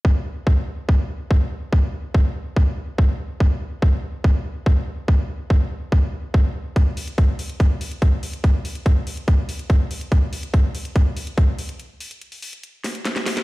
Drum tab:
HH |----------------|----------------|----------------|----------------|
SD |----------------|----------------|----------------|----------------|
BD |o---o---o---o---|o---o---o---o---|o---o---o---o---|o---o---o---o---|

HH |x-oxx-oxx-oxx-ox|x-oxx-oxx-oxx-ox|x-oxx-oxx-oxx-ox|x-oxxooxx-oxx-ox|
SD |----------------|----------------|----------------|----------o-oooo|
BD |o---o---o---o---|o---o---o---o---|o---o---o---o---|----------------|